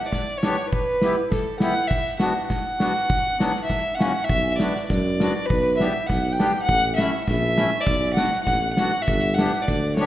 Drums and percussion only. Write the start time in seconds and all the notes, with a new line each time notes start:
0.12 kick, snare
0.43 snare
0.73 kick
1.02 snare
1.31 kick, snare
1.60 snare
1.91 kick
2.20 snare
2.50 kick, snare
2.80 snare
3.10 kick
3.40 snare
3.56 snare
3.70 kick, snare
4.00 snare
4.29 kick
4.60 snare
4.76 snare
4.90 kick, snare
5.20 snare
5.50 kick
5.80 snare
6.10 kick, snare
6.40 snare
6.69 kick
6.98 snare
7.28 kick, snare
7.58 snare
7.87 kick
8.17 snare
8.32 snare
8.47 kick, snare
8.77 snare
9.08 kick
9.39 snare
9.53 snare
9.68 kick, snare
9.97 snare